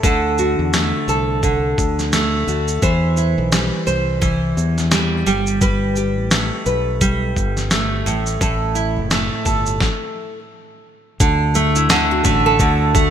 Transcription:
0.00 0.55 D2 medium
0.00 0.12 A2 medium
0.00 1.42 D3 medium
0.00 0.73 A3 medium
0.00 0.38 E4 soft
0.00 kick loud
0.00 shaker medium
0.04 1.08 A4 medium
0.38 2.46 F#4 medium
0.38 shaker medium
0.59 0.91 E2 medium
0.73 2.12 A3 medium
0.73 snare loud
0.73 shaker medium
1.08 1.74 C2 medium
1.08 2.83 A4 medium
1.08 shaker soft
1.43 2.82 D3 medium
1.43 kick medium
1.43 shaker medium
1.78 2.44 D2 medium
1.78 kick medium
1.78 shaker soft
1.99 snare soft
1.99 shaker soft
2.13 2.91 A3 medium
2.13 snare loud
2.13 shaker medium
2.47 2.80 D2 medium
2.47 2.91 F#4 soft
2.47 shaker medium
2.68 shaker soft
2.82 3.34 E2 medium
2.82 4.20 E3 medium
2.82 3.86 C5 medium
2.82 kick loud
2.82 shaker medium
3.17 5.35 E4 medium
3.17 shaker soft
3.38 3.70 B1 medium
3.52 4.91 G3 medium
3.52 snare loud
3.52 shaker medium
3.87 4.53 C2 medium
3.87 5.35 C5 medium
3.87 shaker soft
4.21 5.26 E3 medium
4.21 kick medium
4.21 shaker medium
4.57 5.23 E2 medium
4.57 shaker soft
4.78 snare soft
4.78 shaker soft
4.91 5.26 G3 medium
4.91 snare loud
4.91 shaker medium
5.26 6.17 G1 medium
5.26 5.60 G3 medium
5.26 shaker medium
5.47 shaker soft
5.61 7.00 G3 medium
5.61 6.65 B4 medium
5.61 kick loud
5.61 shaker medium
5.96 8.14 G4 medium
5.96 shaker soft
6.17 6.50 A1 medium
6.31 7.71 A3 medium
6.31 snare loud
6.31 shaker medium
6.66 7.32 B1 medium
6.66 8.14 B4 medium
6.66 shaker soft
7.01 8.14 G3 medium
7.01 kick medium
7.01 shaker medium
7.36 8.02 G1 medium
7.36 kick medium
7.36 shaker soft
7.57 snare soft
7.57 shaker soft
7.71 9.10 A3 medium
7.71 snare loud
7.71 shaker medium
8.06 8.38 A1 medium
8.06 8.40 A2 medium
8.06 shaker medium
8.26 shaker soft
8.41 8.98 A1 medium
8.41 9.89 A2 medium
8.41 9.45 A4 medium
8.41 kick loud
8.41 shaker medium
8.75 10.39 E4 medium
8.75 shaker soft
8.97 9.29 F#1 medium
9.11 10.39 A3 medium
9.11 snare loud
9.11 shaker medium
9.45 9.78 G1 medium
9.45 10.39 A4 medium
9.45 kick medium
9.45 shaker medium
9.66 shaker soft
9.81 kick medium
9.81 snare medium
11.20 12.21 D2 medium
11.20 11.89 D3 medium
11.20 kick loud
11.20 shaker medium
11.55 12.23 A3 medium
11.55 shaker medium
11.75 13.10 E4 medium
11.75 shaker medium
11.89 12.59 D3 medium
11.89 snare loud
11.89 shaker medium
12.11 13.10 F#4 medium
12.24 12.57 A1 medium
12.24 12.93 A3 medium
12.24 kick loud
12.24 shaker medium
12.46 13.10 A4 medium
12.59 13.10 D2 loud
12.59 13.10 D3 medium
12.59 kick medium
12.59 shaker medium
12.95 13.10 A3 medium
12.95 kick loud
12.95 shaker medium

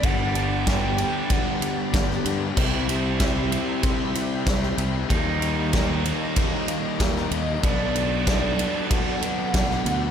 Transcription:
0.00 1.03 G1 loud
0.00 0.67 G2 medium
0.00 7.60 G4 medium
0.00 0.68 F#5 loud
0.00 2.53 A5 medium
0.00 2.53 B5 medium
0.00 2.54 D6 medium
0.00 kick loud
0.00 ride loud
0.05 0.66 D3 medium
0.05 0.37 G3 medium
0.05 0.36 B3 loud
0.05 0.35 D4 loud
0.35 0.67 G3 medium
0.35 0.68 B3 medium
0.35 0.68 D4 medium
0.35 ride medium
0.67 1.30 D3 medium
0.67 1.01 G3 medium
0.67 0.99 B3 medium
0.67 0.98 D4 medium
0.67 1.33 G5 loud
0.67 kick loud
0.67 snare loud
0.67 ride loud
0.98 1.31 G3 medium
0.98 1.31 B3 medium
0.98 1.32 D4 medium
0.98 ride medium
1.30 1.94 G2 medium
1.30 1.92 D3 loud
1.30 1.63 G3 medium
1.30 1.61 B3 loud
1.30 1.60 D4 loud
1.30 2.26 F#5 loud
1.30 kick loud
1.30 ride loud
1.61 1.94 G3 medium
1.61 1.93 B3 medium
1.61 1.94 D4 medium
1.61 ride medium
1.93 2.19 G1 medium
1.93 2.55 D3 medium
1.93 2.26 G3 medium
1.93 2.24 B3 medium
1.93 2.24 D4 medium
1.93 kick loud
1.93 snare loud
1.93 ride loud
2.11 snare soft
2.25 2.50 G2 medium
2.25 2.57 G3 medium
2.25 2.55 B3 medium
2.25 2.55 D4 medium
2.25 ride medium
2.56 3.57 C2 loud
2.56 3.18 C3 loud
2.56 2.89 G3 loud
2.56 2.88 C4 loud
2.56 2.86 E4 loud
2.56 5.08 E5 medium
2.56 5.07 B5 medium
2.56 5.08 C6 loud
2.56 kick loud
2.56 crash loud
2.88 3.19 G3 medium
2.88 3.19 C4 medium
2.88 3.20 E4 medium
2.88 ride medium
3.19 3.81 C3 medium
3.19 3.52 G3 medium
3.19 3.51 C4 medium
3.19 3.49 E4 medium
3.19 kick loud
3.19 snare loud
3.19 ride loud
3.50 3.81 G3 medium
3.50 3.82 C4 medium
3.50 3.82 E4 medium
3.50 ride medium
3.82 4.44 C3 loud
3.82 4.15 G3 loud
3.82 4.15 C4 medium
3.82 4.14 E4 loud
3.82 kick loud
3.82 ride loud
4.15 4.45 G3 medium
4.15 4.46 C4 medium
4.15 4.46 E4 medium
4.15 ride medium
4.46 4.72 C2 loud
4.46 5.08 C3 medium
4.46 4.78 G3 medium
4.46 4.77 C4 medium
4.46 4.76 E4 medium
4.46 kick loud
4.46 snare loud
4.46 ride loud
4.63 snare soft
4.77 5.03 C2 loud
4.77 5.08 G3 medium
4.77 5.08 C4 medium
4.77 5.08 E4 medium
4.77 ride medium
5.08 6.10 D#2 loud
5.08 5.71 D#3 medium
5.08 5.41 G3 loud
5.08 5.40 A#3 loud
5.08 5.39 D#4 loud
5.08 7.61 D#5 medium
5.08 7.61 A#5 medium
5.08 10.11 D6 medium
5.08 kick loud
5.08 ride loud
5.40 5.72 G3 medium
5.40 5.72 A#3 medium
5.40 5.73 D#4 medium
5.40 ride medium
5.73 6.34 D#3 medium
5.73 6.05 G3 medium
5.73 6.04 A#3 medium
5.73 6.03 D#4 loud
5.73 kick loud
5.73 snare loud
5.73 ride loud
6.04 6.35 G3 medium
6.04 6.36 A#3 medium
6.04 6.36 D#4 medium
6.04 ride medium
6.35 6.97 D#3 medium
6.35 6.68 G3 medium
6.35 6.68 A#3 loud
6.35 6.67 D#4 loud
6.35 kick loud
6.35 ride loud
6.68 6.99 G3 medium
6.68 6.99 A#3 medium
6.68 7.00 D#4 medium
6.68 ride medium
6.99 7.25 D#2 medium
6.99 7.61 D#3 medium
6.99 7.32 G3 medium
6.99 7.31 A#3 medium
6.99 7.30 D#4 medium
6.99 kick loud
6.99 snare loud
6.99 ride loud
7.16 snare soft
7.31 7.57 D#2 loud
7.31 7.62 G3 medium
7.31 7.62 A#3 medium
7.31 7.61 D#4 medium
7.31 7.64 D#5 medium
7.31 ride medium
7.63 8.63 B1 loud
7.63 8.25 B2 loud
7.63 7.96 F#3 loud
7.63 7.95 B3 loud
7.63 7.94 D4 loud
7.63 10.11 A4 medium
7.63 8.91 D5 loud
7.63 10.11 A5 medium
7.63 10.11 B5 medium
7.63 kick loud
7.63 ride loud
7.95 8.27 F#3 medium
7.95 8.27 B3 medium
7.95 8.28 D4 medium
7.95 ride medium
8.26 8.89 B2 medium
8.26 8.59 F#3 medium
8.26 8.59 B3 medium
8.26 8.57 D4 medium
8.26 kick loud
8.26 snare loud
8.26 ride loud
8.58 8.89 F#3 medium
8.58 8.91 B3 medium
8.58 8.91 D4 medium
8.58 ride medium
8.89 9.52 B2 medium
8.89 9.23 F#3 loud
8.89 9.23 B3 medium
8.89 9.21 D4 loud
8.89 10.11 F#5 loud
8.89 kick loud
8.89 ride loud
9.22 9.53 F#3 medium
9.22 9.55 B3 medium
9.22 9.54 D4 medium
9.22 ride medium
9.54 9.79 B1 medium
9.54 10.11 B2 medium
9.54 9.86 F#3 medium
9.54 9.86 B3 medium
9.54 9.85 D4 loud
9.54 kick loud
9.54 snare loud
9.54 ride loud
9.71 snare soft
9.86 10.11 D2 loud
9.86 10.11 F#3 medium
9.86 10.11 B3 medium
9.86 10.11 D4 medium
9.86 ride medium

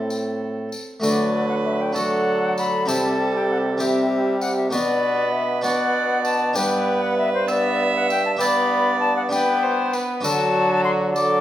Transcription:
0.00 0.69 A2 soft
0.00 0.69 A2 medium
0.00 0.73 C4 medium
0.00 0.97 C4 soft
0.00 0.98 E4 soft
0.00 0.80 A4 medium
0.00 0.99 A4 soft
0.00 0.11 E5 medium
0.10 tambourine soft
0.72 tambourine soft
1.00 2.85 D3 medium
1.00 1.92 F#3 medium
1.00 1.91 A3 medium
1.00 1.92 F#4 medium
1.00 1.47 D5 loud
1.00 tambourine medium
1.04 1.96 B4 loud
1.49 1.55 F#5 loud
1.64 1.82 E5 loud
1.81 1.95 G5 loud
1.93 2.91 F#3 medium
1.93 2.84 A3 medium
1.93 2.85 F#4 medium
1.93 2.88 A4 medium
1.93 2.57 F#5 loud
1.93 tambourine medium
2.58 2.89 B5 loud
2.58 tambourine medium
2.85 4.75 C3 medium
2.85 4.69 C3 medium
2.85 3.80 G3 medium
2.85 3.76 C4 medium
2.85 3.77 E4 medium
2.85 3.77 G4 medium
2.85 3.82 A4 loud
2.85 3.38 A5 loud
2.85 tambourine medium
3.37 3.50 G5 medium
3.51 3.58 F#5 loud
3.78 4.73 G3 medium
3.78 4.69 C4 medium
3.78 4.69 E4 medium
3.78 4.70 G4 medium
3.78 4.73 G4 medium
3.78 4.40 E5 loud
3.78 tambourine medium
4.41 4.56 F#5 loud
4.41 tambourine medium
4.56 4.71 E5 loud
4.70 6.57 B2 medium
4.70 6.53 B2 medium
4.70 5.64 B3 medium
4.70 5.60 D4 medium
4.70 5.61 F#4 medium
4.70 5.62 B4 medium
4.70 5.63 B4 loud
4.70 5.34 D5 loud
4.70 tambourine medium
5.32 5.62 E5 loud
5.61 6.54 B3 medium
5.61 6.52 D4 medium
5.61 6.52 F#4 medium
5.61 6.53 B4 medium
5.61 6.54 D5 loud
5.61 6.24 F#5 loud
5.61 tambourine medium
6.24 6.57 A5 loud
6.24 tambourine medium
6.53 9.96 G2 medium
6.53 9.93 G2 medium
6.53 7.31 B3 medium
6.53 8.35 D4 medium
6.53 8.35 G4 medium
6.53 8.36 B4 medium
6.53 7.49 B4 loud
6.53 7.03 G5 loud
6.53 tambourine medium
7.02 7.17 F#5 loud
7.17 7.33 E5 loud
7.34 7.49 C5 loud
7.48 8.11 B3 loud
7.48 7.94 D5 loud
7.48 8.42 E5 loud
7.48 tambourine medium
7.96 8.10 F#5 loud
8.10 8.25 G5 loud
8.10 tambourine medium
8.26 8.32 A5 loud
8.37 9.28 B3 loud
8.37 9.27 D4 medium
8.37 9.28 G4 medium
8.37 9.29 B4 medium
8.37 8.99 B5 loud
8.37 tambourine medium
8.41 9.32 D5 loud
9.00 9.16 A5 loud
9.17 9.23 F#5 loud
9.29 10.22 B3 loud
9.29 10.20 D4 medium
9.29 10.20 G4 medium
9.29 9.65 B4 loud
9.29 10.21 D5 medium
9.29 9.94 G5 loud
9.29 tambourine medium
9.63 9.95 C5 loud
9.93 10.26 B4 medium
9.93 tambourine soft
10.21 11.41 D3 medium
10.21 11.41 D3 loud
10.21 11.14 F#3 loud
10.21 11.41 D4 medium
10.21 11.41 F#4 medium
10.21 11.14 F#4 loud
10.21 11.41 A4 medium
10.21 10.81 A5 loud
10.21 tambourine medium
10.84 10.91 C6 loud
11.15 11.41 F#3 loud
11.15 11.41 A4 loud
11.15 11.41 D6 loud
11.15 tambourine medium

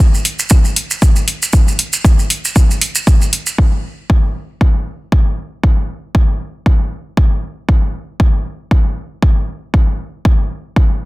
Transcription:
0.14 maracas soft
0.25 open hi-hat medium
0.39 maracas medium
0.49 kick loud
0.49 maracas medium
0.65 maracas soft
0.76 open hi-hat medium
0.91 maracas medium
1.02 kick loud
1.02 maracas medium
1.16 maracas soft
1.28 open hi-hat medium
1.42 maracas medium
1.53 kick loud
1.53 maracas medium
1.68 maracas soft
1.79 open hi-hat medium
1.93 maracas medium
2.05 kick loud
2.05 maracas medium
2.19 maracas soft
2.30 open hi-hat medium
2.45 maracas medium
2.56 kick loud
2.56 maracas medium
2.71 maracas soft
2.81 open hi-hat medium
2.95 maracas medium
3.07 kick loud
3.07 maracas medium
3.21 maracas soft
3.33 open hi-hat medium
3.46 maracas medium
3.58 kick loud
4.10 kick loud
4.61 kick loud
5.12 kick loud
5.63 kick loud
6.15 kick loud
6.66 kick loud
7.17 kick loud
7.69 kick loud
8.20 kick loud
8.71 kick loud
9.22 kick loud
9.74 kick loud
10.25 kick loud
10.76 kick loud

